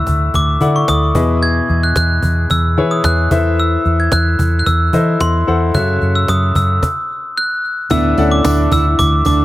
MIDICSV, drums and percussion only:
0, 0, Header, 1, 3, 480
1, 0, Start_track
1, 0, Tempo, 540541
1, 1263, Time_signature, 4, 2, 24, 8
1, 8391, End_track
2, 0, Start_track
2, 0, Title_t, "Cajon"
2, 59, Note_on_c, 9, 36, 81
2, 148, Note_off_c, 9, 36, 0
2, 302, Note_on_c, 9, 36, 78
2, 307, Note_on_c, 9, 38, 49
2, 391, Note_off_c, 9, 36, 0
2, 396, Note_off_c, 9, 38, 0
2, 538, Note_on_c, 9, 36, 66
2, 626, Note_off_c, 9, 36, 0
2, 782, Note_on_c, 9, 38, 102
2, 871, Note_off_c, 9, 38, 0
2, 1020, Note_on_c, 9, 36, 109
2, 1108, Note_off_c, 9, 36, 0
2, 1499, Note_on_c, 9, 38, 33
2, 1588, Note_off_c, 9, 38, 0
2, 1738, Note_on_c, 9, 38, 100
2, 1826, Note_off_c, 9, 38, 0
2, 1975, Note_on_c, 9, 36, 78
2, 2064, Note_off_c, 9, 36, 0
2, 2217, Note_on_c, 9, 38, 44
2, 2219, Note_on_c, 9, 36, 79
2, 2306, Note_off_c, 9, 38, 0
2, 2307, Note_off_c, 9, 36, 0
2, 2458, Note_on_c, 9, 38, 34
2, 2547, Note_off_c, 9, 38, 0
2, 2700, Note_on_c, 9, 38, 107
2, 2788, Note_off_c, 9, 38, 0
2, 2939, Note_on_c, 9, 36, 106
2, 3028, Note_off_c, 9, 36, 0
2, 3182, Note_on_c, 9, 38, 45
2, 3271, Note_off_c, 9, 38, 0
2, 3418, Note_on_c, 9, 38, 34
2, 3507, Note_off_c, 9, 38, 0
2, 3655, Note_on_c, 9, 38, 102
2, 3744, Note_off_c, 9, 38, 0
2, 3898, Note_on_c, 9, 36, 86
2, 3986, Note_off_c, 9, 36, 0
2, 4142, Note_on_c, 9, 36, 86
2, 4143, Note_on_c, 9, 38, 49
2, 4230, Note_off_c, 9, 36, 0
2, 4232, Note_off_c, 9, 38, 0
2, 4378, Note_on_c, 9, 36, 75
2, 4467, Note_off_c, 9, 36, 0
2, 4622, Note_on_c, 9, 38, 114
2, 4710, Note_off_c, 9, 38, 0
2, 4861, Note_on_c, 9, 38, 38
2, 4950, Note_off_c, 9, 38, 0
2, 5100, Note_on_c, 9, 36, 98
2, 5189, Note_off_c, 9, 36, 0
2, 5337, Note_on_c, 9, 38, 34
2, 5426, Note_off_c, 9, 38, 0
2, 5580, Note_on_c, 9, 38, 95
2, 5669, Note_off_c, 9, 38, 0
2, 5819, Note_on_c, 9, 36, 84
2, 5908, Note_off_c, 9, 36, 0
2, 6062, Note_on_c, 9, 36, 100
2, 6062, Note_on_c, 9, 38, 83
2, 6150, Note_off_c, 9, 36, 0
2, 6151, Note_off_c, 9, 38, 0
2, 7021, Note_on_c, 9, 36, 108
2, 7110, Note_off_c, 9, 36, 0
2, 7262, Note_on_c, 9, 38, 38
2, 7351, Note_off_c, 9, 38, 0
2, 7500, Note_on_c, 9, 38, 119
2, 7588, Note_off_c, 9, 38, 0
2, 7738, Note_on_c, 9, 36, 90
2, 7827, Note_off_c, 9, 36, 0
2, 7983, Note_on_c, 9, 36, 101
2, 7986, Note_on_c, 9, 38, 59
2, 8071, Note_off_c, 9, 36, 0
2, 8075, Note_off_c, 9, 38, 0
2, 8219, Note_on_c, 9, 36, 81
2, 8308, Note_off_c, 9, 36, 0
2, 8391, End_track
3, 0, Start_track
3, 0, Title_t, "Drums"
3, 7014, Note_on_c, 9, 54, 42
3, 7103, Note_off_c, 9, 54, 0
3, 7259, Note_on_c, 9, 54, 31
3, 7348, Note_off_c, 9, 54, 0
3, 7500, Note_on_c, 9, 54, 90
3, 7589, Note_off_c, 9, 54, 0
3, 7740, Note_on_c, 9, 54, 47
3, 7829, Note_off_c, 9, 54, 0
3, 7984, Note_on_c, 9, 54, 35
3, 8073, Note_off_c, 9, 54, 0
3, 8212, Note_on_c, 9, 54, 47
3, 8301, Note_off_c, 9, 54, 0
3, 8391, End_track
0, 0, End_of_file